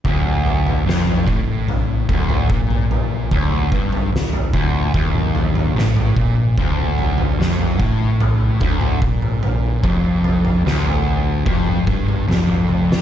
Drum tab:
SD |----o-----------|----o-------o---|----o-----------|----o-------o--o|
T1 |----------------|----------------|----------------|--------------o-|
T2 |----------o-o---|---------oo-o-o-|----------o-o---|---------oo-o---|
FT |o-oo-o--o-oo-oo-|o-oo-o--o-oo-oo-|o-oo-o--o-oo-oo-|o-oo-o--o-oo-o--|
BD |o-----o---o-o---|o-o---o-o-----o-|o-----o---o-o---|o-------o-o-----|